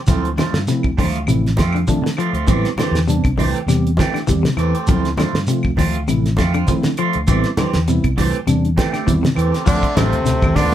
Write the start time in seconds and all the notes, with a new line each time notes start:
0.07 D2 F3 A3 C4 E4 F4, kick, snare, closed hi-hat, high conga, low conga, shekere
0.25 closed hi-hat
0.37 D3 F3 A3 C4 F4, snare, closed hi-hat, high conga, claves, shekere
0.53 G2, snare, closed hi-hat
0.67 C3 F3 A3 C4 E4, snare, closed hi-hat, shekere
0.83 D2, kick, claves
0.97 D3 F3 A3 C4 F4, kick, open hi-hat, high conga, low conga, shekere
1.15 closed hi-hat
1.27 A1 C3 F3 A3 C4 E4, closed hi-hat, claves, shekere
1.46 snare, closed hi-hat
1.57 F2 F3 A3 C4 F4, kick, snare, closed hi-hat, high conga, shekere
1.73 D3, closed hi-hat, claves
1.87 F3 A3 C4 D4, kick, closed hi-hat, high conga, shekere
2.02 D3
2.06 snare, closed hi-hat
2.17 F3 A3 C4 F4, closed hi-hat, claves, shekere
2.33 D2 A3 C4 F4, closed hi-hat
2.47 A1 E3 G3 A3 B3 C4 E4 G4, kick, closed hi-hat, high conga, low conga, shekere
2.65 snare, closed hi-hat
2.76 D3 E3 A3 C4 G4, muted fingered electric bass stroke, snare, closed hi-hat, high conga, claves, shekere
2.91 E2, snare, closed hi-hat
3.08 C3 G3 B3 C4 D4, closed hi-hat, shekere
3.24 C2, kick, closed hi-hat, claves
3.37 D3 E3 A3 C4 G4, kick, open hi-hat, high conga, low conga, shekere
3.56 closed hi-hat
3.67 E2 C3 G3 B3 C4 G4, snare, closed hi-hat, claves, shekere
3.87 closed hi-hat
3.97 E3 A3 C4 G4, kick, snare, closed hi-hat, high conga, shekere
4.14 D3, snare, closed hi-hat, claves
4.27 E2 E3 G3 B3 C4 G4, kick, closed hi-hat, high conga, shekere
4.43 C3, snare, closed hi-hat
4.57 E2 E3 A3 C4 G4, closed hi-hat, claves, shekere
4.75 A3 C4 G4, closed hi-hat
4.87 D2 F3 A3 C4 E4 F4, kick, closed hi-hat, high conga, low conga, shekere
5.05 snare, closed hi-hat
5.17 D3 A3 C4 F4, snare, closed hi-hat, high conga, low conga, claves, shekere
5.34 G2, snare, closed hi-hat
5.47 C3 F3 A3 C4 F4, closed hi-hat, shekere
5.63 D2, kick, claves
5.77 F3 A3 C4 F4, kick, snare, open hi-hat, high conga, low conga, shekere
5.94 closed hi-hat
6.07 A1 C3 F3 A3 C4 E4, closed hi-hat, claves, shekere
6.26 snare, closed hi-hat
6.37 F2 A3 C4 F4, kick, snare, closed hi-hat, high conga, shekere
6.52 D3 C4 F4, closed hi-hat, high conga, claves
6.67 F3 A3 C4, kick, closed hi-hat, high conga, shekere
6.71 E4
6.83 D3, snare, closed hi-hat
6.97 F3 A3 C4 F4, closed hi-hat, claves, shekere
7.13 D2, closed hi-hat
7.27 A1 E3 G3 A3 B3 C4 G4, kick, closed hi-hat, high conga, low conga, shekere
7.31 E4
7.44 snare, closed hi-hat
7.57 D3 E3 C4 G4, muted clean electric guitar stroke, muted fingered electric bass stroke, snare, closed hi-hat, high conga, low conga, claves, shekere
7.73 E2, snare, closed hi-hat
7.88 C3 G3 B3 C4 E4, closed hi-hat, shekere
8.04 C2, kick, closed hi-hat, claves
8.17 D3 E3 A3 C4 G4, kick, snare, open hi-hat, high conga, low conga, shekere
8.34 closed hi-hat
8.47 E2 C3 G3 B3 C4 D4, closed hi-hat, claves, shekere
8.65 closed hi-hat
8.77 E3 A3 C4 G4, kick, snare, closed hi-hat, high conga, shekere
8.92 D3 A3 C4 G4, snare, closed hi-hat, claves
9.06 E2 E3 G3 B3 C4 E4, kick, closed hi-hat, high conga, shekere
9.23 C3, snare, closed hi-hat, high conga
9.35 E2 E3 A3 C4 G4, closed hi-hat, claves, shekere
9.52 A3 C4 G4, snare, closed hi-hat
9.65 D2 D3 F3 A3 C4 D4 F4, kick, crash, high conga, shekere
9.82 kick, closed hi-hat, shekere
9.95 A1 C3 D3 A3 C4 F4, snare, closed hi-hat, high conga, low conga, claves, shekere
10.00 A3
10.12 D2, closed hi-hat, shekere
10.24 D2 C3, snare, closed hi-hat, high conga, low conga, shekere
10.42 kick, high conga, claves, shekere
10.56 D2 D3 A3 B3 C4 D4 F4, kick, open hi-hat, high conga, low conga, shekere